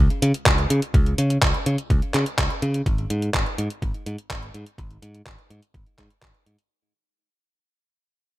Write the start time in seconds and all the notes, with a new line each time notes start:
0.10 closed hi-hat
0.22 C#3, closed hi-hat
0.34 closed hi-hat
0.46 C#2, kick, clap, closed hi-hat
0.58 closed hi-hat
0.70 C#3, closed hi-hat
0.82 closed hi-hat
0.94 C#2, kick, closed hi-hat
1.06 closed hi-hat
1.18 C#3, closed hi-hat
1.30 closed hi-hat
1.42 C#2, kick, clap, closed hi-hat
1.54 closed hi-hat
1.66 C#3, closed hi-hat
1.78 closed hi-hat
1.90 C#2, kick, closed hi-hat
2.02 closed hi-hat
2.14 C#3, clap, closed hi-hat
2.26 closed hi-hat
2.38 C#2, kick, clap, closed hi-hat
2.50 closed hi-hat
2.62 C#3, closed hi-hat
2.74 closed hi-hat
2.86 G#1, kick, closed hi-hat
2.98 closed hi-hat
3.10 G#2, closed hi-hat
3.22 closed hi-hat
3.34 G#1, kick, clap, closed hi-hat
3.46 closed hi-hat
3.58 G#2, closed hi-hat
3.70 closed hi-hat
3.82 G#1, kick, closed hi-hat
3.94 closed hi-hat
4.06 G#2, closed hi-hat
4.18 closed hi-hat
4.30 G#1, kick, clap, closed hi-hat
4.42 closed hi-hat
4.54 G#2, closed hi-hat
4.66 closed hi-hat
4.78 G#1, kick, closed hi-hat
4.91 closed hi-hat
5.02 G#2, closed hi-hat
5.15 closed hi-hat
5.26 G#1, kick, clap, closed hi-hat
5.39 closed hi-hat
5.50 G#2, closed hi-hat
5.63 closed hi-hat
5.74 G#1, kick, closed hi-hat
5.86 closed hi-hat
5.98 G#2, kick, clap, closed hi-hat
6.10 closed hi-hat
6.22 G#1, kick, clap, closed hi-hat
6.34 closed hi-hat
6.46 G#2, closed hi-hat
6.59 closed hi-hat